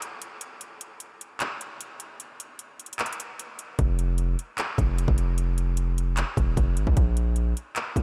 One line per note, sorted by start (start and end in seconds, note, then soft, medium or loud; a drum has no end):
0.02 closed hi-hat medium
0.22 closed hi-hat medium
0.41 closed hi-hat medium
0.61 closed hi-hat medium
0.81 closed hi-hat medium
1.00 closed hi-hat medium
1.21 closed hi-hat medium
1.40 clap loud
1.40 closed hi-hat medium
1.61 closed hi-hat medium
1.81 closed hi-hat medium
2.00 closed hi-hat medium
2.20 closed hi-hat medium
2.40 closed hi-hat medium
2.59 closed hi-hat medium
2.80 closed hi-hat soft
2.86 closed hi-hat soft
2.93 closed hi-hat medium
2.99 clap loud
2.99 closed hi-hat medium
3.06 closed hi-hat medium
3.13 closed hi-hat medium
3.20 closed hi-hat medium
3.39 closed hi-hat medium
3.59 closed hi-hat medium
3.79 4.36 F1 loud
3.79 kick loud
3.79 closed hi-hat medium
3.99 closed hi-hat medium
4.18 closed hi-hat medium
4.39 closed hi-hat medium
4.58 clap loud
4.58 closed hi-hat medium
4.78 5.07 F1 loud
4.78 kick medium
4.78 closed hi-hat medium
4.98 closed hi-hat medium
5.08 6.23 F1 loud
5.08 kick loud
5.18 closed hi-hat medium
5.38 closed hi-hat medium
5.58 closed hi-hat medium
5.77 closed hi-hat medium
5.98 closed hi-hat medium
6.17 clap loud
6.17 closed hi-hat medium
6.37 6.56 E1 loud
6.37 kick medium
6.37 closed hi-hat medium
6.57 6.78 F1 loud
6.57 kick medium
6.57 closed hi-hat medium
6.77 6.86 G#1 loud
6.77 closed hi-hat medium
6.87 6.96 C2 loud
6.87 kick loud
6.97 7.54 A#1 loud
6.97 kick loud
6.97 closed hi-hat medium
7.17 closed hi-hat medium
7.36 closed hi-hat medium
7.57 closed hi-hat medium
7.76 clap loud
7.76 closed hi-hat medium
7.96 8.03 A#1 loud
7.96 kick medium
7.96 closed hi-hat medium